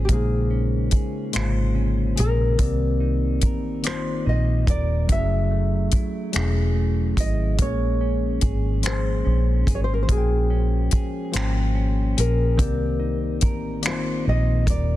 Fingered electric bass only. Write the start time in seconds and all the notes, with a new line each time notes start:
0.10 A#1
0.93 muted fingered electric bass stroke
1.35 G#1
2.19 A#1
3.43 A1
4.27 A#1
4.68 D#1
5.10 F#1
6.35 E1
7.18 G#1
7.59 A#1
8.43 G#1
9.26 A#1
9.68 G#1
10.94 muted fingered electric bass stroke
11.35 G#1
12.18 A#1
12.60 C2
13.43 A1
14.27 A#1
14.68 D#1